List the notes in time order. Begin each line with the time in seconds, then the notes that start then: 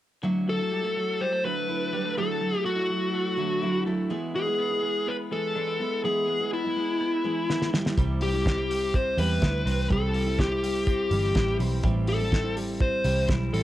0.23 D3 F#3 A3 E4
0.48 F#3 A4
0.59 F#3 A3 E4
0.72 G3
0.83 F#3 A3 E4
0.96 F#3
1.21 G3 C5
1.33 A3
1.43 D3 F#3 A3 E4 B4
1.68 D3 F#3 A3 E4
1.93 D3 F#3 G3 A3 E4
2.05 A3
2.17 D3 F#3 A3 E4 A4
2.41 F#3
2.52 F#3 A3 E4
2.65 A3 F#4
2.76 F#3 A3 E4
2.90 F#3
3.14 A3
3.37 D3 F#3 A3 E4
3.62 D3 F#3 A3 E4
3.86 D3 F#3 A3 E4
4.10 E3 G#3 B3 E4
4.35 G#3 G#4
4.46 G#3 B3 E4
4.59 B3
4.70 G#3 B3 E4
4.83 G#3
5.07 B3 B4
5.31 E3 G#3 B3 E4 A4
5.55 E3 G#3 B3 D4 E4
5.68 E4
5.80 E3 G#3 B3 E4
6.04 E3 G#3 B3 E4 G#4
6.28 G#3
6.40 G#3 B3 E4
6.53 B3 E4
6.64 G#3 B3 E4
6.77 G#3
7.01 B3
7.24 E3 G#3 B3 E4
7.49 E3 G#3 B3 E4, snare
7.62 snare
7.73 E3 G3 C4 E4, snare
7.86 snare
7.97 C2 C3 E3 G3 C4 E4, kick, closed hi-hat
8.21 G3 G4, open hi-hat
8.33 G3 C4 E4
8.46 C4, kick, snare, closed hi-hat
8.58 G3 C4 E4
8.70 G3, open hi-hat
8.94 C4 C5, kick, closed hi-hat
9.18 E2 E3 G3 C4 E4 B4, open hi-hat
9.42 D2 E3 G3 C4 E4, kick, snare, closed hi-hat
9.66 C2 E3 G3 C4 E4, open hi-hat
9.90 C2 C3 E3 G3 C4 E4 A4, kick, closed hi-hat
10.14 G3, open hi-hat
10.26 G3 C4 E4
10.39 C4 G4, kick, snare, closed hi-hat
10.51 G3 C4 E4
10.63 G3, open hi-hat
10.87 C4, kick, closed hi-hat
11.11 G1 E3 G3 C4 E4, open hi-hat
11.35 A1 E3 G3 C4 E4, kick, snare, closed hi-hat
11.59 B1 E3 G3 C4 E4, open hi-hat
11.83 A1 A2 E3 G3 C4 E4, kick, closed hi-hat
12.07 G3 A4, open hi-hat
12.20 G3 C4 E4
12.32 C4, kick, snare, closed hi-hat
12.44 G3 C4 E4
12.57 G3, open hi-hat
12.80 C4 C5, kick, closed hi-hat
13.04 C2 E3 G3 C4 E4, open hi-hat
13.29 B1 E3 G3 C4 E4, kick, snare, closed hi-hat
13.53 A1 E3 G3 C4 E4 A4, open hi-hat